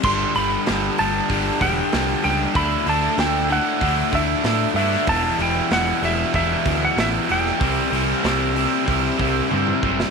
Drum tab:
CC |x---------------|----------------|----------------|----------------|
HH |--o-o-o-o-o-o-o-|o-o-o-o-o-o-o-o-|o-o-o-o-o-o-o-o-|o-o-o-o-o-o-----|
SD |----o-------o---|----o-------o--o|----o-------o--o|----o----------o|
T1 |----------------|----------------|----------------|------------o---|
T2 |----------------|----------------|----------------|-------------o--|
BD |o-------o-o-----|o-------o-o-----|o-------o-o-----|o-------o-o---o-|